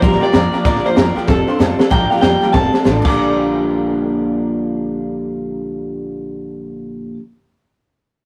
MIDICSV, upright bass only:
0, 0, Header, 1, 3, 480
1, 0, Start_track
1, 0, Key_signature, -2, "major"
1, 0, Tempo, 314301
1, 997, Time_signature, 4, 2, 24, 8
1, 12599, End_track
2, 0, Start_track
2, 0, Title_t, "Upright bass"
2, 0, Program_c, 0, 32
2, 33, Note_on_c, 0, 34, 94
2, 278, Note_off_c, 0, 34, 0
2, 516, Note_on_c, 0, 41, 91
2, 760, Note_off_c, 0, 41, 0
2, 995, Note_on_c, 0, 34, 92
2, 1239, Note_off_c, 0, 34, 0
2, 1299, Note_on_c, 0, 39, 92
2, 1443, Note_off_c, 0, 39, 0
2, 1480, Note_on_c, 0, 41, 94
2, 1721, Note_off_c, 0, 41, 0
2, 1957, Note_on_c, 0, 29, 95
2, 2199, Note_off_c, 0, 29, 0
2, 2441, Note_on_c, 0, 41, 96
2, 2682, Note_off_c, 0, 41, 0
2, 2918, Note_on_c, 0, 34, 88
2, 3174, Note_off_c, 0, 34, 0
2, 3396, Note_on_c, 0, 41, 86
2, 3653, Note_off_c, 0, 41, 0
2, 3878, Note_on_c, 0, 29, 88
2, 4134, Note_off_c, 0, 29, 0
2, 4358, Note_on_c, 0, 33, 95
2, 4614, Note_off_c, 0, 33, 0
2, 4657, Note_on_c, 0, 34, 94
2, 10907, Note_off_c, 0, 34, 0
2, 12599, End_track
3, 0, Start_track
3, 0, Title_t, "Muted upright bass strokes"
3, 329, Note_on_c, 9, 29, 72
3, 481, Note_off_c, 9, 29, 0
3, 815, Note_on_c, 9, 29, 76
3, 968, Note_off_c, 9, 29, 0
3, 1780, Note_on_c, 9, 29, 73
3, 1933, Note_off_c, 9, 29, 0
3, 2255, Note_on_c, 9, 29, 67
3, 2407, Note_off_c, 9, 29, 0
3, 2739, Note_on_c, 9, 29, 71
3, 2892, Note_off_c, 9, 29, 0
3, 3217, Note_on_c, 9, 29, 74
3, 3369, Note_off_c, 9, 29, 0
3, 3695, Note_on_c, 9, 29, 70
3, 3848, Note_off_c, 9, 29, 0
3, 4184, Note_on_c, 9, 29, 70
3, 4336, Note_off_c, 9, 29, 0
3, 12599, End_track
0, 0, End_of_file